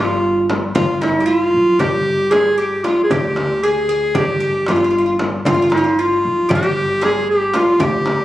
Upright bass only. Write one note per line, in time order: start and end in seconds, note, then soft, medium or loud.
0.00 0.72 G1 medium
0.76 1.51 G1 medium
1.54 1.79 B1 medium
1.79 2.80 G1 medium
3.10 4.11 D2 medium
4.15 4.64 G1 medium
4.68 5.42 G1 medium
5.45 6.19 G1 medium
6.25 6.49 B1 medium
6.50 7.50 G1 medium
7.79 8.25 D2 medium